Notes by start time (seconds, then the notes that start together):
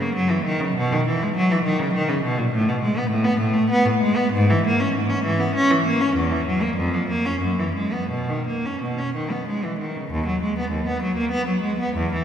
0.01 A#3
0.15 F#3
0.30 E3
0.45 D#3
0.60 C#3
0.76 B2
0.93 D#3
1.07 E3
1.23 G#3
1.35 F#3
1.52 E3
1.65 D#3
1.79 C#3
1.94 D#3
2.09 C#3
2.24 B2
2.38 A#2
2.52 A2
2.69 B2
2.83 G#3
2.98 B3
3.11 A2
3.25 B3
3.40 A2
3.54 A3
3.70 B3
3.85 A2
4.01 G#3
4.16 B3
4.33 G#2
4.50 E3
4.67 A#3
4.80 C#4
4.96 G#2
5.10 C#4
5.24 E3
5.40 B3
5.56 C#4
5.71 E3
5.86 A#3
6.01 C#4
6.16 E2
6.32 E3
6.47 F#3
6.62 A#3
6.77 F2
6.94 F3
7.09 A#3
7.26 C#4
7.41 F#2
7.59 E3
7.75 G#3
7.93 B3
8.10 B2
8.29 D#3
8.47 A#3
8.66 C#4
8.82 B2
8.98 C#4
9.15 D#3
9.31 B3
9.48 G#3
9.64 E3
9.79 D#3
9.97 C#3
10.11 D#2
10.27 F#3
10.43 G#3
10.59 B3
10.71 D#2
10.87 B3
11.03 F#3
11.17 A#3
11.31 B3
11.47 F#3
11.62 G#3
11.80 B3
11.97 E2
12.14 E3